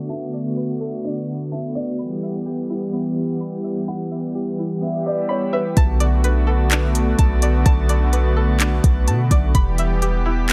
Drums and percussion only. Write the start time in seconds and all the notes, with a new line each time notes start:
5.77 kick, closed hi-hat
6.00 closed hi-hat
6.24 closed hi-hat
6.71 clap, closed hi-hat
6.95 closed hi-hat
7.19 kick, closed hi-hat
7.42 closed hi-hat
7.66 kick, closed hi-hat
7.89 closed hi-hat
8.13 closed hi-hat
8.60 clap, closed hi-hat
8.84 kick, closed hi-hat
9.08 closed hi-hat
9.31 kick, closed hi-hat
9.55 kick, closed hi-hat
9.78 closed hi-hat
10.02 closed hi-hat
10.49 clap, closed hi-hat